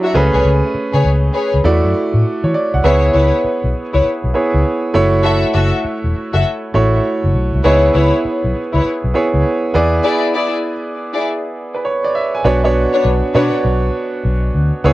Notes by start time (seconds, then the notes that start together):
Already playing: F#3 D4 E4 C#5
0.03 F#4 C#5 E5
0.14 C#2 A3 C#4 G#4 B4
0.33 C2 G#4 B4 C#5
0.45 C#2
0.74 muted fingered electric bass stroke
0.93 C#3 G#4 B4 C#5
1.04 C#2
1.34 G#4 B4 C#5
1.54 C#2
1.64 E2 A3 E4 F#4 D5
1.84 F#2
2.14 A2
2.44 E3 C#5
2.54 D5
2.74 C2 F#5
2.84 C#2 B3 E4 G#4 B4 C#5
3.14 C#2 E4 B4 C#5
3.44 muted fingered electric bass stroke
3.64 B1
3.93 C#2 E4 B4 C#5
4.24 B1
4.34 B3 E4 G#4 C#5
4.54 C#2
4.94 F#1 A3 E4 F#4 C#5
5.23 F#4 A4 E5
5.53 F#1 F#4 A4 E5
5.84 muted fingered electric bass stroke
6.04 E1
6.33 F#1 F#4 A4 E5
6.74 A1 A3 E4 F#4 C#5
7.24 F#1
7.34 B1
7.54 C2
7.64 C#2 B3 D#4 E4 G#4 B4 C#5
7.71 E4
7.94 C#2 E4 B4 C#5
8.25 muted fingered electric bass stroke
8.44 B1
8.73 C#2 E4 B4 C#5
9.04 B1
9.14 B3 E4 G#4 C#5
9.34 C#2
9.74 E2 B3 E4 G#4 D5
10.04 E4 G#4 D5
10.34 E4 G#4 D5
11.13 E4 G#4 D5
11.74 B4
11.85 C#5
12.04 D5
12.15 E5
12.35 G#5
12.44 B1 B3 D4 F#4 C#5
12.64 B3 D4 F#4 C#5
12.93 D4 B4 C#5
13.05 B1
13.34 B2 B3 D4 F#4 B4 C#5
13.65 B1
14.25 B1
14.54 D2
14.84 C#2 B3 E4 G#4 C#5